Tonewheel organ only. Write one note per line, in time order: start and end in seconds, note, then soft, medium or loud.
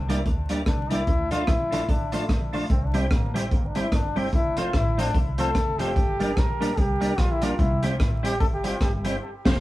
0.09 0.22 D4 medium
0.09 0.22 G4 medium
0.09 0.22 A#4 medium
0.09 0.22 D5 loud
0.26 0.31 A#4 soft
0.26 0.31 D5 soft
0.49 0.62 D4 medium
0.49 0.62 G4 medium
0.49 0.62 A#4 medium
0.49 0.63 D5 medium
0.90 1.03 D4 medium
0.90 1.03 G4 medium
0.90 1.03 A#4 medium
0.90 1.03 D5 loud
1.31 1.44 D4 medium
1.31 1.44 F4 medium
1.31 1.44 A4 medium
1.31 1.44 D5 loud
1.71 1.84 D4 medium
1.71 1.84 F4 medium
1.71 1.84 A4 medium
1.71 1.85 D5 loud
1.88 1.93 A4 soft
1.88 1.93 D5 soft
2.12 2.25 D4 medium
2.12 2.25 F4 medium
2.12 2.25 A4 medium
2.12 2.26 D5 loud
2.53 2.66 D4 loud
2.53 2.66 F4 medium
2.53 2.66 A4 medium
2.53 2.66 D5 loud
2.94 3.06 C4 medium
2.94 3.07 E4 medium
2.94 3.07 G4 medium
2.94 3.07 C5 loud
3.34 3.47 C4 medium
3.34 3.47 E4 medium
3.34 3.47 G4 medium
3.34 3.48 C5 loud
3.52 3.56 G4 soft
3.52 3.56 C5 soft
3.75 3.88 C4 medium
3.75 3.88 E4 medium
3.75 3.88 G4 medium
3.75 3.88 C5 loud
4.16 4.28 C4 medium
4.16 4.29 E4 medium
4.16 4.29 G4 medium
4.16 4.29 C5 loud
4.57 4.70 C4 loud
4.57 4.70 F4 medium
4.57 4.70 A4 medium
4.57 4.70 C5 loud
4.98 5.10 C4 medium
4.98 5.11 F4 medium
4.98 5.11 A4 medium
4.98 5.11 C5 loud
5.15 5.19 A4 soft
5.15 5.19 C5 soft
5.38 5.51 C4 medium
5.38 5.51 F4 medium
5.38 5.51 A4 medium
5.38 5.51 C5 loud
5.79 5.92 C4 loud
5.79 5.92 F4 medium
5.79 5.92 A4 medium
5.79 5.92 C5 loud
6.20 6.32 A#3 medium
6.20 6.33 D4 medium
6.20 6.33 G4 medium
6.20 6.33 A#4 loud
6.60 6.73 A#3 medium
6.60 6.73 D4 medium
6.60 6.73 G4 medium
6.60 6.73 A#4 loud
6.78 6.82 G4 soft
6.78 6.82 A#4 soft
7.01 7.14 A#3 loud
7.01 7.14 D4 medium
7.01 7.14 G4 medium
7.01 7.14 A#4 loud
7.42 7.54 A#3 loud
7.42 7.55 D4 medium
7.42 7.55 G4 medium
7.42 7.55 A#4 loud
7.83 7.95 C4 medium
7.83 7.95 E4 medium
7.83 7.95 G4 medium
7.83 7.96 C5 loud
8.23 8.35 C4 loud
8.23 8.36 E4 medium
8.23 8.36 G4 medium
8.23 8.36 C5 loud
8.40 8.45 G4 soft
8.40 8.45 C5 soft
8.64 8.76 C4 medium
8.64 8.77 E4 medium
8.64 8.77 G4 medium
8.64 8.77 C5 loud
9.04 9.17 C4 medium
9.04 9.17 E4 medium
9.04 9.17 G4 medium
9.04 9.18 C5 loud
9.45 9.57 C4 loud
9.45 9.57 F4 loud
9.45 9.57 A4 loud
9.45 9.57 C5 loud